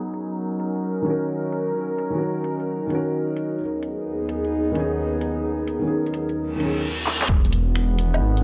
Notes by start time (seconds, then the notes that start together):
Already playing: F#3 C#4 D#4 A#4
0.14 closed hi-hat
0.60 closed hi-hat
0.75 closed hi-hat
1.02 D#3 C#4
1.06 F#4 A#4, closed hi-hat
1.52 closed hi-hat
1.98 closed hi-hat
2.10 D#3 C#4
2.15 F#4 A#4
2.44 closed hi-hat
2.60 closed hi-hat
2.87 D#3 C#4, closed hi-hat
2.92 F#4 A#4
3.37 closed hi-hat
3.60 D#2 B3 D#4 G#4
3.83 closed hi-hat
4.29 closed hi-hat
4.45 closed hi-hat
4.71 D#3 C#4, closed hi-hat
4.77 D#4 G#4
5.21 closed hi-hat
5.44 A#4
5.68 closed hi-hat
5.79 D#3 C#4
5.85 D#4 G#4
6.06 closed hi-hat
6.14 closed hi-hat
6.29 closed hi-hat
6.37 reverse cymbal
6.56 D#3 C#4
6.60 D#4 G#4, closed hi-hat
7.06 clap
7.22 clap
7.29 E1 D#3 G#3 B3, kick
7.45 closed hi-hat
7.53 closed hi-hat
7.76 finger snap
7.98 E1, closed hi-hat
8.14 low woodblock
8.21 G#1
8.37 closed hi-hat